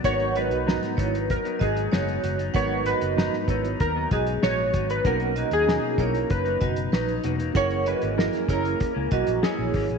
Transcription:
<<
  \new Staff \with { instrumentName = "Vibraphone" } { \time 4/4 \key gis \minor \tempo 4 = 96 <b' fis''>8 <fis' dis''>8. r16 <e' cis''>16 r8. <fis' dis''>16 r16 <fis' cis''>8. r16 | <b' fis''>8 <fis' dis''>8. r16 <e' cis''>16 r8. <fis' dis''>16 r16 <fis' cis''>8. r16 | <ais' fis''>8 <fis' dis''>8. r16 <e' cis''>16 r8. <fis' dis''>16 r16 <dis' b'>8. r16 | <ais' fis''>8 <fis' dis''>8. r16 <e' cis''>16 r8. <fis' dis''>16 r16 <e' cis''>8. r16 | }
  \new Staff \with { instrumentName = "Synth keys" } { \time 4/4 \key gis \minor cis''8 b'4. ais'8 gis'4 r8 | cis''8 b'4. ais'8 gis'8 cis''8. b'16 | ais'8. gis'8. ais'8 b'4. r8 | cis''8 b'8 ais'8 ais'4 fis'8 gis'4 | }
  \new Staff \with { instrumentName = "Reed electric piano" } { \time 4/4 \key gis \minor <b dis' fis' ais'>8. r16 <b dis' fis' ais''>4. r4. | <b dis' fis' ais'>8. r16 <b dis' fis' ais''>4. r4. | <cis' dis' fis' ais'>8. r16 <cis' dis' fis' ais''>4. r4. | <cis' e' gis' ais'>8. r16 <cis' e' gis' ais'>4. r4. | }
  \new Staff \with { instrumentName = "Clean electric guitar" } { \time 4/4 \key gis \minor <gis, fis b dis'>8 <gis, fis b dis'>16 <fis b dis'>16 <gis, fis b dis'>8 <gis, fis b dis'>16 <fis b dis'>8 <fis b dis'>16 <gis, fis b dis'>8 <gis, fis b dis'>8 <gis, fis b dis'>16 <fis b dis'>16 | <gis, fis b dis'>8 <gis, fis b dis'>16 <fis b dis'>16 <gis, fis b dis'>8 <gis, fis b dis'>16 <fis b dis'>8 <fis b dis'>16 <gis, fis b dis'>8 <gis, fis b dis'>8 <gis, fis b dis'>16 <fis b dis'>16 | <b, fis ais dis'>8 <b, fis ais dis'>16 <fis ais dis'>16 <b, fis ais dis'>8 <b, fis ais dis'>16 <fis ais dis'>8 <fis ais dis'>16 <b, fis dis'>8 <fis dis'>8 <b, fis ais dis'>16 <fis ais dis'>16 | <fis, e ais cis'>8 <fis, e ais cis'>16 <e ais cis'>16 <fis, e ais cis'>8 <fis, e ais cis'>16 <e ais cis'>8 <e ais cis'>16 <fis, e ais cis'>8 <fis, e ais cis'>8 <fis, e ais cis'>16 <e ais cis'>16 | }
  \new Staff \with { instrumentName = "Fingered electric bass" } { \clef bass \time 4/4 \key gis \minor gis,,8. b,,8 r16 gis,,8. r16 gis,,8 fis,,8 fis,,8 | gis,,8. fis,,8 r16 gis,,8 dis,8 b,,8 ais,,8 gis,,8 | b,,8. dis,8 r16 b,,8 fis,,8 fis,,8 ais,,8 e,,8 | fis,,8. gis,,8 r16 fis,,8 r16 cis,16 b,,16 ais,,16 r16 ais,,16 gis,,16 ais,,16 | }
  \new DrumStaff \with { instrumentName = "Drums" } \drummode { \time 4/4 <hh bd>16 hh16 hh16 hh16 sn16 <hh sn>16 <hh bd>16 hh16 <hh bd>16 hh16 <hh bd>16 hh16 sn16 hh16 hh16 hh16 | <hh bd>8 hh16 hh16 sn16 sn16 <hh bd>16 hh16 <hh bd>8 <hh bd>16 hh16 sn8 <hh bd>16 hh16 | <hh bd>16 hh16 hh16 hh16 sn8 <hh bd>16 hh16 <hh bd>16 hh16 <hh bd>16 hh16 sn16 hh16 hh16 hh16 | <hh bd>16 hh16 hh16 hh16 sn16 <hh sn>16 <hh bd>16 hh16 <hh bd>8 <hh bd>16 hh16 sn8 <hho bd>16 hh16 | }
>>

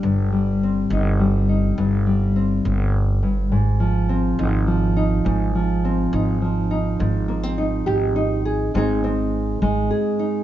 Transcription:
<<
  \new Staff \with { instrumentName = "Nylon-string guitar" } { \time 6/8 \key f \dorian \tempo 4. = 69 << { r4 c'8 ees'4 ees'8 | r4 c'2 | r4 c'8 ees'4 ees'8 | r4 c'8 ees'4 ees'8 |
r8 bes16 c'16 ees'8 g'8 ees'8 aes'8 | <aes c' ees' aes'>8 c'4 ees'8 aes'8 ees'8 | } \\ { g,8 g4. g4 | g,8 g2 g,8 | aes,8 f4. f4 | aes,8 f4. f4 |
aes,2. | aes,4. aes4. | } >> }
  \new Staff \with { instrumentName = "Upright bass" } { \clef bass \time 6/8 \key f \dorian g,,4. g,,4. | g,,4. g,,4. | aes,,4. aes,,4. | aes,,4. aes,,4. |
aes,,4. aes,,4. | aes,,4. aes,,8 r4 | }
>>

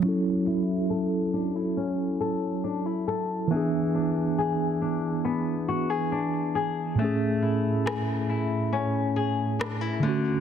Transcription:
<<
  \new Staff \with { instrumentName = "Nylon-string guitar" } { \time 4/4 \key fis \minor \tempo 4 = 69 fis8 e'8 a'8 d'16 e'16 cis'8 a'8 d'16 e'16 a'8 | e8 d'8 gis'8 d'8 b8 fis'16 gis'16 d'8 gis'8 | a8 e'8 gis'8 e'8 cis'8 gis'8 d'16 e'16 d8 | }
  \new Staff \with { instrumentName = "Tine electric piano" } { \time 4/4 \key fis \minor <fis cis' e' a'>1 | <e b d' gis'>1 | <a, a cis' gis'>2.~ <a, a cis' gis'>8 <d a cis' fis'>8 | }
  \new DrumStaff \with { instrumentName = "Drums" } \drummode { \time 4/4 r4 r4 r4 r4 | r4 r4 r4 r4 | r4 ss4 r4 ss4 | }
>>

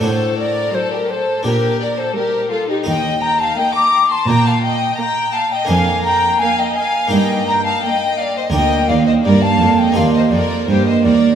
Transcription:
<<
  \new Staff \with { instrumentName = "Flute" } { \time 4/4 \key ees \lydian \tempo 4 = 85 c''8 d''8 c''16 bes'16 c''8 bes'8 d''16 c''16 bes'8 a'16 g'16 | g''8 bes''16 a''16 g''16 d'''8 c'''16 bes''16 a''16 g''8 bes''8 a''16 g''16 | aes''8 bes''8 aes''16 g''16 aes''8 g''8 bes''16 a''16 g''8 f''16 ees''16 | g''8 f''16 ees''16 d''16 a''8 g''16 f''16 ees''16 d''8 c''16 ees''16 d''8 | }
  \new Staff \with { instrumentName = "Violin section" } { \time 4/4 \key ees \lydian c''8 d''8 c''16 bes'16 c''8 bes'8 d''16 c''16 bes'8 a'16 g'16 | g''8 bes''16 a''16 g''16 d'''8 c'''16 bes''16 a''16 g''8 bes''8 a''16 g''16 | aes''8 bes''8 aes''16 g''16 aes''8 g''8 bes''16 a''16 g''8 f''16 ees''16 | g''8 f''16 ees''16 d''16 a''8 g''16 f''16 ees''16 d''8 c''16 ees''16 d''8 | }
  \new Staff \with { instrumentName = "Violin section" } { \time 4/4 \key ees \lydian a'8 bes'8 a'16 g'16 a'8 g'8 bes'16 a'16 g'8 f'16 ees'16 | ees''8 g''16 f''16 ees''16 bes''8 a''16 g''16 f''16 ees''8 g''8 f''16 ees''16 | f''8 g''8 f''16 ees''16 f''8 ees''8 g''16 f''16 ees''8 d''16 c''16 | ees''8 d''16 c''16 bes'16 f''8 ees''16 d''16 c''16 bes'8 g'16 c''16 bes'8 | }
  \new Staff \with { instrumentName = "Harpsichord" } { \time 4/4 \key ees \lydian <a d' fis'>2 <d' g'>2 | <ees' bes'>1 | <bes d' bes'>2 <bes ees' bes'>2 | <bes d' bes'>2 <bes c' g'>2 | }
  \new Staff \with { instrumentName = "Harpsichord" } { \clef bass \time 4/4 \key ees \lydian a,4 r4 bes,4 r4 | ees,4 r4 bes,4 r4 | f,4 r4 g,4 r4 | d,8 ees,8 g,8 f,8 ees,8 f,8 g,8 ees,8 | }
  \new Staff \with { instrumentName = "Viola section" } { \time 4/4 \key ees \lydian r4 fis4 r4 g4 | r4 bes4 r4 bes4 | r4 bes4 r4 bes4 | bes4 bes4 bes4 bes4 | }
  \new Staff \with { instrumentName = "Cello section" } { \clef bass \time 4/4 \key ees \lydian a,4 r4 bes,4 r4 | ees,4 r4 bes,4 r4 | f,4 r4 g,4 r4 | d,8 ees,8 g,8 f,8 ees,8 f,8 g,8 ees,8 | }
>>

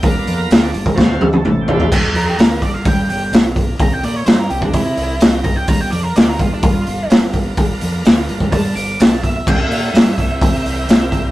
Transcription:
<<
  \new Staff \with { instrumentName = "Lead electric guitar" } { \time 4/4 \key c \major \tempo 4 = 127 r1 | r8 ais'16 g'16 ais'8 d''16 f''16 g''8 g''8 r4 | bes''16 g''16 d''16 cis''16 c''16 bes'16 g'16 d'16 e'4 r8 bes''16 g''16 | ais''16 g''16 d''16 ais'16 d''16 ais'16 f'16 d'16 f'4 r4 |
r2 a''8 d'''8 a''8 e''8 | g''16 e''4~ e''16 e''2~ e''8 | }
  \new Staff \with { instrumentName = "Tonewheel organ" } { \time 4/4 \key c \major << { d''16 d''16 d''16 ais'16 f'16 d'16 d'16 ais16 <c a>2 | \tuplet 3/2 { <c' ees' fis' b'>8 <b d' f' ais'>4~ } <b d' f' ais'>2. | <e' g' bes' dis''>1 | <b d' f' ais'>1~ |
<b d' f' ais'>1 | <c' e' g' bes'>1 | } \\ { <ais b f'>4. r8 <fis c' eis'>8 r4. | <g a b c' d' e' f' g' a' b' c''>8 r2. r8 | r1 | r1 |
r1 | r1 | } >> }
  \new Staff \with { instrumentName = "Fingered electric bass" } { \clef bass \time 4/4 \key c \major g,,8 f,8 d,8 g,,8 d,8 d,8 a,,4 | g,,8 f,8 d,8 g,,8 g,8 g,,8 b,,4 | c,8 bes,8 g,8 c,8 c8 c,8 c,4 | g,,8 f,8 d,8 g,,8 g,8 g,,8 g,,4 |
g,,8 f,8 d,8 g,,8 g,8 g,,8 b,,4 | c,8 bes,8 g,8 c,8 c8 c,8 c,4 | }
  \new DrumStaff \with { instrumentName = "Drums" } \drummode { \time 4/4 <hho bd>8 hho8 <hho sn>8 hho16 bd16 <bd sn>8 tommh16 tommh16 toml8 tomfh16 tomfh16 | <cymc bd>8 hho8 <hho sn>8 <hho bd>8 <hho bd>8 hho8 <hho sn>8 <hho bd>8 | <hho bd>8 hho8 <hho sn>8 hho16 bd16 <hho bd>8 hho8 <hho sn>8 <hho bd>8 | <hho bd>8 hho8 <hho sn>8 <hho bd>8 <hho bd>8 hho8 <hho sn>8 <hho bd>8 |
<hho bd>8 hho8 <hho sn>8 hho16 bd16 <hho bd>8 hho8 <hho sn>8 <hho bd>8 | <cymc bd>8 hho8 <hho sn>8 <hho bd>8 <hho bd>8 hho8 <hho sn>8 <hho bd>8 | }
>>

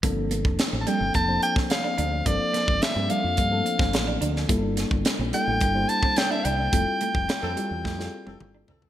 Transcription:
<<
  \new Staff \with { instrumentName = "Soprano saxophone" } { \time 4/4 \key g \dorian \tempo 4 = 108 r4 r16. a''32 g''8 a''8 g''8 f''4 | d''4 e''8 f''2 r8 | r4. g''4 a''8 g''16 e''16 g''8~ | g''2.~ g''8 r8 | }
  \new Staff \with { instrumentName = "Tine electric piano" } { \time 4/4 \key g \dorian <f bes c' d' a'>4~ <f bes c' d' a'>16 r16 <f bes c' d' a'>8 r16 <f bes c' d' c''>4. r16 | <f bes c' d' a'>4~ <f bes c' d' a'>16 r16 <f bes c' d' a'>8 r16 <f a bes c' d' a'>4. r16 | <g bes d' e' a'>4~ <g bes d' e' a'>16 r16 <g bes d' e' a'>8 r16 <g bes d' e' c''>4. r16 | <g c' e' f' a'>4~ <g c' e' f' a'>16 r16 <g c' e' f' g'>8 r16 <g c' e' f' aes' a'>4. r16 | }
  \new Staff \with { instrumentName = "Horn section" } { \time 4/4 \key g \dorian r1 | r1 | r1 | r4 r16 <e c' a'>16 r4 r16 <e c' a'>16 r8 <e c' a'>8 | }
  \new Staff \with { instrumentName = "Clean electric guitar" } { \time 4/4 \key g \dorian bes16 r16 bes16 r8 c'16 g16 r16 bes16 r8 c'16 r16 d'16 d'16 r16 | bes16 r16 bes16 r8 c'16 g16 r16 bes16 r8 c'16 r16 d'16 d'16 r16 | bes16 r16 bes16 r8 c'16 g16 r16 bes16 r8 c'16 r16 d'16 d'16 r16 | a16 r16 a16 r8 c'16 g16 r16 a16 r8 c'16 r16 d'16 d'16 r16 | }
  \new Staff \with { instrumentName = "Fingered electric bass" } { \clef bass \time 4/4 \key g \dorian g,,8. f,,16 r16 a,,16 r16 g,,16 f,,8 r4 d,8 | g,,16 r8 g,,16 r16 g,16 r16 f,16 g,8 r16 g,,16 a,,8 d,8 | g,,8. g,,16 r16 bes,,16 r16 a,,16 g,,8 r4 c,8 | f,,16 r8 f,,16 r16 f,16 r16 e,16 f,8 r16 f,,16 g,,8 c,8 | }
  \new DrumStaff \with { instrumentName = "Drums" } \drummode { \time 4/4 <hh bd>8 hh16 bd16 <hh sn>8 hh8 <hh bd>8 hh16 <bd sn>16 <hh sn>8 hh8 | <hh bd>8 <hh sn>16 bd16 <hh sn>8 hh8 <hh bd>8 hh16 <bd sn>16 <hh sn>8 hh16 sn16 | <hh bd>8 <hh sn>16 bd16 <hh sn>8 hh8 <hh bd>8 hh16 bd16 <hh sn>8 hh8 | <hh bd>8 hh16 bd16 <hh sn>8 hh8 <bd sn>16 sn8 tommh16 toml8 tomfh16 tomfh16 | }
>>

